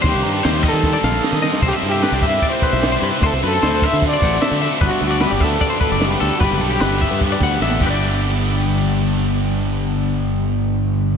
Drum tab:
CC |x-x-x-x---------|x-x-x-x-x-x-x-x-|x-x-x-x-x-x-x-x-|x-x-x-x-x-x-x-x-|
SD |----o---o-o-oooo|----o-------o---|----o-------o---|----o-------o---|
T1 |----------------|----------------|----------------|----------------|
BD |o-----o-o-------|o-----o-o-o-----|o-----o-o-o-----|o-----o-o-o-----|

CC |x-x-x-x-x-x---x-|----------------|----------------|
SD |----o-------o---|----------------|----------------|
T1 |-------------o--|----------------|----------------|
BD |o-----o-o-o---o-|----------------|----------------|